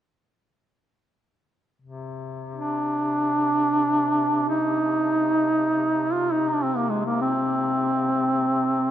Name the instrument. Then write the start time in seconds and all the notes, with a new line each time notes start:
duduk
1.82 C3
2.55 D4
4.49 D#4
6.13 F4
6.32 D#4
6.49 D4
6.64 C4
6.76 A#3
6.90 G#3
7.06 A#3
7.21 C4